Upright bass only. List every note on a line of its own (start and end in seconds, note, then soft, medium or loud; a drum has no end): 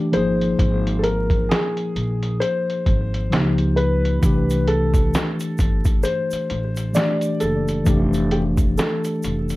0.13 0.56 G#1 medium
0.59 1.46 G#1 loud
1.96 2.38 A#1 medium
2.87 3.29 G#1 medium
3.32 4.19 C#2 loud
4.23 5.10 C2 loud
5.59 6.02 G1 medium
6.32 muted upright bass stroke soft
6.51 6.93 A1 medium
7.42 7.84 F#1 medium
7.87 8.74 F1 loud
9.24 9.56 F1 medium